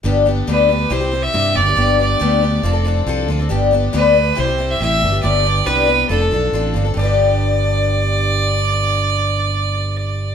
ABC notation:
X:1
M:4/4
L:1/16
Q:1/4=139
K:Gmix
V:1 name="Fiddle"
z4 B4 c3 e3 d2- | d2 d8 z6 | z4 B4 c3 e e4 | d4 B4 A6 z2 |
d16- | d16 |]
V:2 name="Twelve-string acoustic guitar"
[G,,D,G,B,DG]2 [G,B,DG]2 [G,,D,G,B,DG]2 [G,B,DG]2 [C,G,CEG] [CEG] [G,CEG]2 [C,G,CEG]2 [G,B,DG] [G,B,DG] | [G,,D,G,B,DG]2 [G,B,DG]2 [G,,D,G,B,DG]2 [G,B,DG]2 [F,CDA] [CDA] [F,CDA]2 [F,CDA]2 [F,CDA] [CDA] | [G,,D,G,B,DG]2 [G,B,DG]2 [G,,D,G,B,DG]2 [G,B,DG]2 [C,G,CEG] [CEG] [G,CEG]2 [C,G,CEG]2 [G,B,DG] [G,B,DG] | [G,,D,G,B,DG]2 [G,B,DG]2 [G,,D,G,B,DG]2 [G,B,D]2 [F,CDA] [CDA] [F,CDA]2 [F,CDA]2 [F,CDA] [CDA] |
[G,,D,G,B,DG]16- | [G,,D,G,B,DG]16 |]
V:3 name="Fingered electric bass" clef=bass
G,,,4 D,,4 C,,4 G,,2 G,,,2 | G,,,4 D,,4 F,,,4 C,,2 D,,2 | G,,,4 D,,4 C,,4 A,,,2 G,,,2 | G,,,4 C,,4 F,,,2 B,,,2 A,,,2 G,,,2 |
G,,,16- | G,,,16 |]